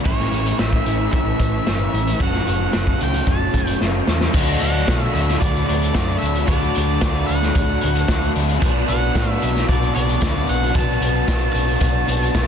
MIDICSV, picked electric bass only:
0, 0, Header, 1, 2, 480
1, 0, Start_track
1, 0, Key_signature, 2, "major"
1, 0, Tempo, 534283
1, 47, Time_signature, 4, 2, 24, 8
1, 11204, End_track
2, 0, Start_track
2, 0, Title_t, "Picked electric bass"
2, 0, Program_c, 0, 34
2, 51, Note_on_c, 0, 33, 87
2, 222, Note_off_c, 0, 33, 0
2, 285, Note_on_c, 0, 33, 100
2, 458, Note_off_c, 0, 33, 0
2, 536, Note_on_c, 0, 33, 87
2, 706, Note_off_c, 0, 33, 0
2, 774, Note_on_c, 0, 33, 78
2, 945, Note_off_c, 0, 33, 0
2, 1011, Note_on_c, 0, 33, 96
2, 1184, Note_off_c, 0, 33, 0
2, 1254, Note_on_c, 0, 33, 88
2, 1426, Note_off_c, 0, 33, 0
2, 1497, Note_on_c, 0, 31, 95
2, 1669, Note_off_c, 0, 31, 0
2, 1737, Note_on_c, 0, 33, 91
2, 1909, Note_off_c, 0, 33, 0
2, 1980, Note_on_c, 0, 30, 81
2, 2151, Note_off_c, 0, 30, 0
2, 2222, Note_on_c, 0, 30, 99
2, 2393, Note_off_c, 0, 30, 0
2, 2462, Note_on_c, 0, 30, 89
2, 2633, Note_off_c, 0, 30, 0
2, 2704, Note_on_c, 0, 37, 75
2, 2875, Note_off_c, 0, 37, 0
2, 2935, Note_on_c, 0, 30, 89
2, 3109, Note_off_c, 0, 30, 0
2, 3176, Note_on_c, 0, 30, 95
2, 3350, Note_off_c, 0, 30, 0
2, 3419, Note_on_c, 0, 30, 79
2, 3592, Note_off_c, 0, 30, 0
2, 3663, Note_on_c, 0, 40, 85
2, 3835, Note_off_c, 0, 40, 0
2, 3902, Note_on_c, 0, 38, 99
2, 4088, Note_off_c, 0, 38, 0
2, 4147, Note_on_c, 0, 38, 82
2, 4331, Note_off_c, 0, 38, 0
2, 4383, Note_on_c, 0, 47, 100
2, 4568, Note_off_c, 0, 47, 0
2, 4621, Note_on_c, 0, 38, 90
2, 4807, Note_off_c, 0, 38, 0
2, 4869, Note_on_c, 0, 38, 94
2, 5052, Note_off_c, 0, 38, 0
2, 5115, Note_on_c, 0, 38, 96
2, 5295, Note_off_c, 0, 38, 0
2, 5346, Note_on_c, 0, 42, 81
2, 5529, Note_off_c, 0, 42, 0
2, 5589, Note_on_c, 0, 38, 89
2, 5772, Note_off_c, 0, 38, 0
2, 5821, Note_on_c, 0, 38, 99
2, 6006, Note_off_c, 0, 38, 0
2, 6076, Note_on_c, 0, 38, 97
2, 6255, Note_off_c, 0, 38, 0
2, 6308, Note_on_c, 0, 38, 96
2, 6490, Note_off_c, 0, 38, 0
2, 6553, Note_on_c, 0, 38, 81
2, 6733, Note_off_c, 0, 38, 0
2, 6788, Note_on_c, 0, 38, 96
2, 6970, Note_off_c, 0, 38, 0
2, 7039, Note_on_c, 0, 38, 88
2, 7216, Note_off_c, 0, 38, 0
2, 7266, Note_on_c, 0, 38, 88
2, 7447, Note_off_c, 0, 38, 0
2, 7510, Note_on_c, 0, 38, 90
2, 7690, Note_off_c, 0, 38, 0
2, 7744, Note_on_c, 0, 35, 97
2, 7926, Note_off_c, 0, 35, 0
2, 7986, Note_on_c, 0, 35, 92
2, 8167, Note_off_c, 0, 35, 0
2, 8223, Note_on_c, 0, 45, 105
2, 8405, Note_off_c, 0, 45, 0
2, 8466, Note_on_c, 0, 35, 84
2, 8647, Note_off_c, 0, 35, 0
2, 8701, Note_on_c, 0, 35, 98
2, 8883, Note_off_c, 0, 35, 0
2, 8947, Note_on_c, 0, 35, 96
2, 9126, Note_off_c, 0, 35, 0
2, 9182, Note_on_c, 0, 38, 81
2, 9363, Note_off_c, 0, 38, 0
2, 9426, Note_on_c, 0, 35, 94
2, 9606, Note_off_c, 0, 35, 0
2, 9660, Note_on_c, 0, 35, 103
2, 9842, Note_off_c, 0, 35, 0
2, 9890, Note_on_c, 0, 35, 90
2, 10075, Note_off_c, 0, 35, 0
2, 10133, Note_on_c, 0, 35, 100
2, 10317, Note_off_c, 0, 35, 0
2, 10369, Note_on_c, 0, 35, 83
2, 10554, Note_off_c, 0, 35, 0
2, 10608, Note_on_c, 0, 35, 97
2, 10793, Note_off_c, 0, 35, 0
2, 10850, Note_on_c, 0, 35, 87
2, 11035, Note_off_c, 0, 35, 0
2, 11089, Note_on_c, 0, 35, 87
2, 11204, Note_off_c, 0, 35, 0
2, 11204, End_track
0, 0, End_of_file